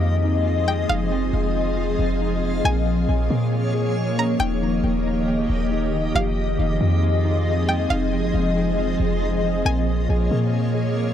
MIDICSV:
0, 0, Header, 1, 6, 480
1, 0, Start_track
1, 0, Key_signature, -4, "minor"
1, 0, Tempo, 437956
1, 982, Time_signature, 4, 2, 24, 8
1, 12205, End_track
2, 0, Start_track
2, 0, Title_t, "Synth pluck"
2, 0, Program_c, 0, 84
2, 0, Note_on_c, 0, 77, 101
2, 700, Note_off_c, 0, 77, 0
2, 743, Note_on_c, 0, 79, 77
2, 970, Note_off_c, 0, 79, 0
2, 980, Note_on_c, 0, 77, 105
2, 2857, Note_off_c, 0, 77, 0
2, 2906, Note_on_c, 0, 80, 96
2, 4540, Note_off_c, 0, 80, 0
2, 4591, Note_on_c, 0, 82, 89
2, 4815, Note_off_c, 0, 82, 0
2, 4820, Note_on_c, 0, 79, 112
2, 6697, Note_off_c, 0, 79, 0
2, 6746, Note_on_c, 0, 77, 96
2, 8380, Note_off_c, 0, 77, 0
2, 8424, Note_on_c, 0, 79, 82
2, 8651, Note_off_c, 0, 79, 0
2, 8660, Note_on_c, 0, 77, 103
2, 10537, Note_off_c, 0, 77, 0
2, 10587, Note_on_c, 0, 80, 94
2, 12205, Note_off_c, 0, 80, 0
2, 12205, End_track
3, 0, Start_track
3, 0, Title_t, "Ambient pad"
3, 0, Program_c, 1, 92
3, 0, Note_on_c, 1, 53, 83
3, 0, Note_on_c, 1, 60, 78
3, 0, Note_on_c, 1, 68, 77
3, 0, Note_on_c, 1, 75, 95
3, 2863, Note_off_c, 1, 60, 0
3, 2863, Note_off_c, 1, 75, 0
3, 2901, Note_on_c, 1, 73, 92
3, 2902, Note_on_c, 1, 58, 80
3, 4778, Note_off_c, 1, 53, 0
3, 4778, Note_off_c, 1, 68, 0
3, 4802, Note_off_c, 1, 73, 0
3, 4822, Note_on_c, 1, 51, 89
3, 4822, Note_on_c, 1, 67, 81
3, 4822, Note_on_c, 1, 75, 95
3, 6704, Note_off_c, 1, 58, 0
3, 6723, Note_off_c, 1, 51, 0
3, 6723, Note_off_c, 1, 67, 0
3, 6723, Note_off_c, 1, 75, 0
3, 6741, Note_on_c, 1, 60, 79
3, 6742, Note_on_c, 1, 53, 83
3, 6742, Note_on_c, 1, 68, 78
3, 6742, Note_on_c, 1, 75, 89
3, 10543, Note_off_c, 1, 60, 0
3, 10543, Note_off_c, 1, 68, 0
3, 10543, Note_off_c, 1, 75, 0
3, 10582, Note_on_c, 1, 58, 77
3, 10582, Note_on_c, 1, 68, 77
3, 10582, Note_on_c, 1, 73, 94
3, 12205, Note_off_c, 1, 53, 0
3, 12205, Note_off_c, 1, 58, 0
3, 12205, Note_off_c, 1, 68, 0
3, 12205, Note_off_c, 1, 73, 0
3, 12205, End_track
4, 0, Start_track
4, 0, Title_t, "Synth texture"
4, 0, Program_c, 2, 99
4, 0, Note_on_c, 2, 56, 84
4, 0, Note_on_c, 2, 65, 79
4, 0, Note_on_c, 2, 75, 91
4, 963, Note_off_c, 2, 75, 0
4, 981, Note_on_c, 2, 77, 98
4, 2863, Note_off_c, 2, 56, 0
4, 2863, Note_off_c, 2, 65, 0
4, 2882, Note_off_c, 2, 77, 0
4, 2901, Note_on_c, 2, 58, 87
4, 2901, Note_on_c, 2, 68, 78
4, 2901, Note_on_c, 2, 73, 94
4, 4802, Note_off_c, 2, 68, 0
4, 4802, Note_off_c, 2, 73, 0
4, 4821, Note_on_c, 2, 67, 80
4, 4821, Note_on_c, 2, 75, 96
4, 6703, Note_off_c, 2, 58, 0
4, 6722, Note_off_c, 2, 67, 0
4, 6741, Note_on_c, 2, 56, 86
4, 6741, Note_on_c, 2, 65, 82
4, 10538, Note_off_c, 2, 75, 0
4, 10543, Note_off_c, 2, 56, 0
4, 10543, Note_off_c, 2, 65, 0
4, 10582, Note_on_c, 2, 58, 86
4, 10582, Note_on_c, 2, 68, 80
4, 10582, Note_on_c, 2, 73, 94
4, 12205, Note_off_c, 2, 58, 0
4, 12205, Note_off_c, 2, 68, 0
4, 12205, Note_off_c, 2, 73, 0
4, 12205, End_track
5, 0, Start_track
5, 0, Title_t, "Synth keys"
5, 0, Program_c, 3, 88
5, 0, Note_on_c, 3, 53, 86
5, 0, Note_on_c, 3, 63, 80
5, 249, Note_off_c, 3, 63, 0
5, 262, Note_on_c, 3, 63, 83
5, 487, Note_off_c, 3, 53, 0
5, 500, Note_on_c, 3, 53, 87
5, 737, Note_on_c, 3, 56, 73
5, 969, Note_off_c, 3, 63, 0
5, 982, Note_on_c, 3, 63, 78
5, 1217, Note_off_c, 3, 53, 0
5, 1230, Note_on_c, 3, 53, 91
5, 1445, Note_off_c, 3, 56, 0
5, 1458, Note_on_c, 3, 56, 75
5, 1689, Note_off_c, 3, 63, 0
5, 1702, Note_on_c, 3, 63, 73
5, 1926, Note_off_c, 3, 53, 0
5, 1939, Note_on_c, 3, 53, 94
5, 2414, Note_off_c, 3, 63, 0
5, 2427, Note_on_c, 3, 63, 83
5, 2646, Note_off_c, 3, 53, 0
5, 2659, Note_on_c, 3, 53, 86
5, 2900, Note_off_c, 3, 53, 0
5, 2900, Note_off_c, 3, 56, 0
5, 2904, Note_off_c, 3, 63, 0
5, 2905, Note_on_c, 3, 58, 92
5, 3385, Note_on_c, 3, 68, 84
5, 3609, Note_off_c, 3, 58, 0
5, 3623, Note_on_c, 3, 58, 89
5, 4084, Note_off_c, 3, 68, 0
5, 4097, Note_on_c, 3, 68, 84
5, 4328, Note_off_c, 3, 58, 0
5, 4341, Note_on_c, 3, 58, 85
5, 4582, Note_on_c, 3, 61, 80
5, 4820, Note_off_c, 3, 68, 0
5, 4821, Note_off_c, 3, 58, 0
5, 4821, Note_on_c, 3, 63, 81
5, 4822, Note_off_c, 3, 61, 0
5, 5056, Note_on_c, 3, 51, 97
5, 5302, Note_on_c, 3, 58, 72
5, 5529, Note_off_c, 3, 63, 0
5, 5542, Note_on_c, 3, 63, 80
5, 5767, Note_off_c, 3, 51, 0
5, 5781, Note_on_c, 3, 51, 86
5, 6243, Note_off_c, 3, 63, 0
5, 6256, Note_on_c, 3, 63, 73
5, 6488, Note_off_c, 3, 51, 0
5, 6501, Note_on_c, 3, 51, 93
5, 6736, Note_on_c, 3, 53, 96
5, 6739, Note_off_c, 3, 63, 0
5, 6742, Note_off_c, 3, 51, 0
5, 6742, Note_off_c, 3, 58, 0
5, 7226, Note_on_c, 3, 63, 83
5, 7451, Note_off_c, 3, 53, 0
5, 7464, Note_on_c, 3, 53, 87
5, 7929, Note_off_c, 3, 63, 0
5, 7942, Note_on_c, 3, 63, 81
5, 8167, Note_off_c, 3, 53, 0
5, 8180, Note_on_c, 3, 53, 89
5, 8417, Note_on_c, 3, 56, 80
5, 8649, Note_off_c, 3, 63, 0
5, 8663, Note_on_c, 3, 63, 80
5, 8897, Note_off_c, 3, 53, 0
5, 8910, Note_on_c, 3, 53, 86
5, 9125, Note_off_c, 3, 56, 0
5, 9138, Note_on_c, 3, 56, 75
5, 9369, Note_off_c, 3, 63, 0
5, 9382, Note_on_c, 3, 63, 73
5, 9607, Note_off_c, 3, 53, 0
5, 9620, Note_on_c, 3, 53, 89
5, 10094, Note_off_c, 3, 63, 0
5, 10107, Note_on_c, 3, 63, 80
5, 10326, Note_off_c, 3, 53, 0
5, 10339, Note_on_c, 3, 53, 89
5, 10580, Note_off_c, 3, 56, 0
5, 10581, Note_off_c, 3, 53, 0
5, 10584, Note_off_c, 3, 63, 0
5, 10586, Note_on_c, 3, 58, 92
5, 11066, Note_on_c, 3, 68, 82
5, 11290, Note_off_c, 3, 58, 0
5, 11303, Note_on_c, 3, 58, 90
5, 11764, Note_off_c, 3, 68, 0
5, 11778, Note_on_c, 3, 68, 84
5, 12008, Note_off_c, 3, 58, 0
5, 12021, Note_on_c, 3, 58, 89
5, 12205, Note_off_c, 3, 58, 0
5, 12205, Note_off_c, 3, 68, 0
5, 12205, End_track
6, 0, Start_track
6, 0, Title_t, "808-style bass"
6, 0, Program_c, 4, 38
6, 0, Note_on_c, 4, 41, 106
6, 938, Note_off_c, 4, 41, 0
6, 981, Note_on_c, 4, 29, 111
6, 1341, Note_on_c, 4, 31, 97
6, 1358, Note_off_c, 4, 29, 0
6, 1455, Note_off_c, 4, 31, 0
6, 1462, Note_on_c, 4, 29, 109
6, 2153, Note_off_c, 4, 29, 0
6, 2181, Note_on_c, 4, 29, 103
6, 2873, Note_off_c, 4, 29, 0
6, 2902, Note_on_c, 4, 34, 122
6, 3363, Note_off_c, 4, 34, 0
6, 3381, Note_on_c, 4, 34, 104
6, 3612, Note_off_c, 4, 34, 0
6, 3622, Note_on_c, 4, 46, 103
6, 4778, Note_off_c, 4, 46, 0
6, 4821, Note_on_c, 4, 27, 120
6, 5282, Note_off_c, 4, 27, 0
6, 5302, Note_on_c, 4, 27, 104
6, 5993, Note_off_c, 4, 27, 0
6, 6022, Note_on_c, 4, 27, 105
6, 6713, Note_off_c, 4, 27, 0
6, 6742, Note_on_c, 4, 29, 116
6, 7203, Note_off_c, 4, 29, 0
6, 7222, Note_on_c, 4, 29, 104
6, 7452, Note_off_c, 4, 29, 0
6, 7461, Note_on_c, 4, 41, 106
6, 8618, Note_off_c, 4, 41, 0
6, 8662, Note_on_c, 4, 29, 109
6, 9022, Note_on_c, 4, 31, 94
6, 9038, Note_off_c, 4, 29, 0
6, 9136, Note_off_c, 4, 31, 0
6, 9141, Note_on_c, 4, 29, 106
6, 9833, Note_off_c, 4, 29, 0
6, 9862, Note_on_c, 4, 29, 104
6, 10553, Note_off_c, 4, 29, 0
6, 10582, Note_on_c, 4, 34, 120
6, 11043, Note_off_c, 4, 34, 0
6, 11062, Note_on_c, 4, 34, 108
6, 11292, Note_off_c, 4, 34, 0
6, 11302, Note_on_c, 4, 46, 107
6, 12205, Note_off_c, 4, 46, 0
6, 12205, End_track
0, 0, End_of_file